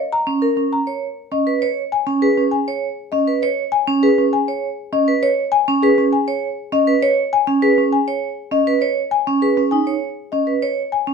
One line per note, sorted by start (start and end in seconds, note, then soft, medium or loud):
0.12 0.32 A#5 medium
0.27 0.47 C#4 medium
0.42 0.62 A#4 medium
0.42 0.62 A#4 soft
0.57 0.77 C#4 medium
0.73 0.92 A#5 medium
0.87 1.07 C#5 medium
1.31 1.52 C#4 medium
1.31 1.52 D#5 soft
1.47 1.67 B4 medium
1.62 1.82 C#5 medium
1.92 2.12 G#5 medium
2.07 2.27 C#4 medium
2.22 2.42 G#4 medium
2.22 2.42 B4 medium
2.38 2.57 C#4 medium
2.51 2.72 G#5 medium
2.68 2.87 C#5 medium
3.12 3.32 C#4 medium
3.12 3.32 D#5 medium
3.27 3.47 B4 medium
3.42 3.62 C#5 medium
3.72 3.92 G#5 medium
3.87 4.07 C#4 medium
4.03 4.22 G#4 medium
4.03 4.22 B4 medium
4.18 4.38 C#4 medium
4.33 4.52 G#5 medium
4.48 4.67 C#5 medium
4.93 5.12 C#4 medium
4.93 5.12 D#5 medium
5.08 5.27 B4 medium
5.23 5.42 C#5 medium
5.52 5.72 G#5 medium
5.68 5.87 C#4 medium
5.83 6.02 G#4 medium
5.83 6.02 B4 medium
5.98 6.17 C#4 medium
6.13 6.32 G#5 medium
6.28 6.47 C#5 medium
6.72 6.92 C#4 medium
6.72 6.92 D#5 medium
6.87 7.07 B4 medium
7.03 7.22 C#5 medium
7.33 7.52 G#5 medium
7.47 7.67 C#4 medium
7.62 7.82 G#4 medium
7.62 7.82 B4 medium
7.78 7.97 C#4 medium
7.93 8.12 G#5 medium
8.08 8.27 C#5 medium
8.52 8.72 C#4 medium
8.52 8.72 D#5 medium
8.67 8.87 B4 medium
8.81 9.02 C#5 medium
9.11 9.32 G#5 medium
9.27 9.47 C#4 medium
9.42 9.62 G#4 medium
9.42 9.62 B4 medium
9.57 9.77 C#4 medium
9.71 9.92 D#4 medium
9.71 9.92 G#5 medium
9.87 10.07 C#5 medium
10.32 10.52 C#4 medium
10.32 10.52 D#5 soft
10.47 10.67 B4 soft
10.62 10.82 C#5 medium
10.62 10.82 C#5 soft
10.92 11.12 G#5 medium
11.07 11.14 C#4 medium